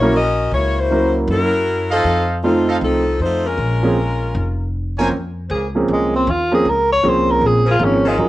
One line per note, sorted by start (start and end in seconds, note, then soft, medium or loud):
0.00 0.48 A#1 medium
0.00 0.13 F#3 medium
0.00 0.12 A#3 medium
0.00 0.13 A#3 medium
0.00 0.13 C#4 medium
0.00 0.12 E4 medium
0.00 0.13 E4 medium
0.00 0.12 F#4 medium
0.00 0.14 A#4 medium
0.00 0.12 C#5 loud
0.16 0.50 C#4 medium
0.16 0.50 F#4 medium
0.16 0.50 A#4 medium
0.16 0.50 D#5 loud
0.52 1.24 C#2 medium
0.52 0.78 A#3 medium
0.52 0.78 E4 medium
0.52 0.78 F#4 medium
0.52 0.78 C#5 loud
0.79 1.16 A#3 medium
0.79 1.16 E4 medium
0.79 1.16 F#4 medium
0.79 1.16 C5 loud
0.91 1.49 F#3 medium
0.91 1.49 A#3 medium
0.91 1.49 C#4 soft
0.91 1.49 E4 soft
0.91 1.49 A#4 medium
1.27 2.01 F#2 medium
1.27 1.89 F#3 medium
1.27 1.89 C#4 medium
1.27 1.89 E4 medium
1.27 1.89 A#4 loud
1.91 2.28 F3 medium
1.91 2.28 C4 medium
1.91 2.28 D#4 medium
1.91 2.41 A4 medium
1.91 2.28 A4 medium
1.91 2.41 C5 medium
1.91 2.41 D#5 medium
1.91 2.40 F5 loud
2.04 2.77 F2 medium
2.43 3.02 F3 medium
2.43 3.02 A3 medium
2.43 2.79 A3 medium
2.43 2.79 C4 medium
2.43 3.02 C4 medium
2.43 2.79 D#4 medium
2.43 3.02 D#4 medium
2.43 2.79 F4 medium
2.43 3.02 A4 medium
2.68 2.77 A4 medium
2.68 2.77 C5 medium
2.68 2.77 D#5 medium
2.68 2.77 F5 medium
2.81 3.17 C2 medium
2.81 3.18 F3 medium
2.81 3.18 C4 medium
2.81 3.18 D#4 medium
2.81 3.18 A4 medium
3.19 3.55 F2 medium
3.19 3.46 A3 medium
3.19 3.46 D#4 medium
3.19 3.45 F4 medium
3.19 3.46 C5 medium
3.46 4.74 G#3 medium
3.46 4.74 C#4 medium
3.46 4.74 F4 medium
3.46 4.74 A#4 medium
3.57 4.31 A#1 medium
3.83 3.95 F3 medium
3.83 3.95 A#3 medium
3.83 3.96 C4 medium
3.83 3.96 C#4 medium
3.83 3.96 G#4 medium
4.35 5.08 F1 medium
4.98 5.11 F3 medium
4.98 5.11 A#3 medium
4.98 5.11 C4 soft
4.98 5.11 C#4 soft
4.98 5.08 A#4 medium
4.98 5.12 A#4 medium
4.98 5.09 C5 medium
4.98 5.08 C#5 medium
4.98 5.09 G#5 medium
5.11 5.49 F2 medium
5.49 5.87 C#2 medium
5.49 5.67 C#3 medium
5.49 5.67 A#3 medium
5.49 5.66 C4 medium
5.49 5.66 G#4 medium
5.75 6.24 F3 medium
5.75 6.24 A#3 soft
5.75 6.25 C4 soft
5.75 6.25 C#4 medium
5.75 6.25 G#4 medium
5.88 6.26 C2 medium
5.93 6.14 G#3 medium
6.16 6.32 C4 medium
6.27 6.64 D#2 medium
6.27 6.53 F4 medium
6.52 6.64 F3 medium
6.52 6.64 A#3 medium
6.52 6.64 C4 medium
6.52 6.64 C#4 medium
6.52 6.70 G#4 medium
6.52 6.65 A#4 medium
6.65 7.02 C#2 medium
6.65 6.91 A#4 medium
6.92 7.10 C#5 loud
7.03 7.41 C2 medium
7.03 7.62 F3 medium
7.03 7.62 A#3 medium
7.03 7.62 C4 medium
7.03 7.62 C#4 medium
7.03 7.62 G#4 medium
7.09 7.32 C5 medium
7.31 7.48 A#4 loud
7.41 7.79 A#1 medium
7.46 7.69 G#4 medium
7.65 7.75 C#3 medium
7.65 7.75 A#3 medium
7.65 7.75 C4 medium
7.65 7.75 G#4 loud
7.71 7.86 F4 medium
7.79 8.17 G#1 medium
7.79 8.02 F3 medium
7.79 8.02 A#3 soft
7.79 8.03 C4 soft
7.79 8.03 C#4 soft
7.79 8.03 G#4 medium
7.84 8.09 C#4 medium
8.05 8.14 D#3 medium
8.05 8.14 F#3 medium
8.05 8.29 G#3 medium
8.05 8.15 C#4 medium
8.05 8.15 F4 medium
8.18 8.29 D#2 medium
8.18 8.29 F#3 medium
8.18 8.29 C#4 soft
8.18 8.29 D#4 medium
8.18 8.29 F4 soft
8.18 8.29 A#4 medium